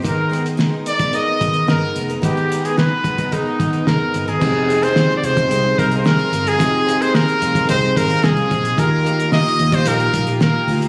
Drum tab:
CC |----------------|----------------|x---------------|----------------|
HH |x-xx--xxx-xx--xx|xxxx--xxx-xx--xx|--xx--xxx-xx-xxx|x-xx-xxxx-xx-xxx|
SD |----o-------o---|----o-------o---|----oo------o---|----o-------o---|
BD |o------o--o-----|o-----ooo-o-----|o------o--o-----|o------oo-o---o-|

CC |----------------|
HH |x-xx-xxxxxxx--ox|
SD |----oo------o---|
BD |o------o--o-----|